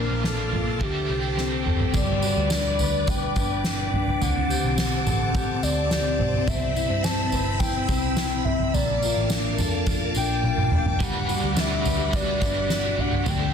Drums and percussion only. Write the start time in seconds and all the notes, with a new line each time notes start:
0.24 snare
0.53 floor tom
0.81 kick, floor tom
1.37 snare
1.66 mid tom
1.80 floor tom
1.94 kick, floor tom, crash, tambourine
2.22 tambourine
2.50 snare, tambourine
2.79 floor tom, tambourine
3.07 kick, floor tom, tambourine
3.36 kick, tambourine
3.64 snare, tambourine
3.93 floor tom
4.07 floor tom
4.21 floor tom, tambourine
4.50 tambourine
4.78 snare, tambourine
5.07 floor tom, tambourine
5.35 kick, floor tom, tambourine
5.63 tambourine
5.91 snare, tambourine
6.19 floor tom
6.33 floor tom
6.48 kick, floor tom, tambourine
6.76 tambourine
7.04 snare, tambourine
7.32 floor tom, tambourine
7.60 kick, floor tom, tambourine
7.88 kick, tambourine
8.16 snare, tambourine
8.45 floor tom
8.60 floor tom
8.74 floor tom, tambourine
9.02 tambourine
9.30 snare, tambourine
9.58 floor tom, tambourine
9.86 kick, floor tom, tambourine
10.15 tambourine
10.43 high tom
10.58 mid tom
10.71 mid tom
10.86 floor tom
11.00 kick, floor tom, tambourine
11.29 tambourine
11.57 snare, tambourine
11.85 floor tom, tambourine
12.13 kick, floor tom, tambourine
12.41 kick, tambourine
12.70 snare, tambourine
12.98 floor tom
13.12 floor tom
13.26 floor tom, tambourine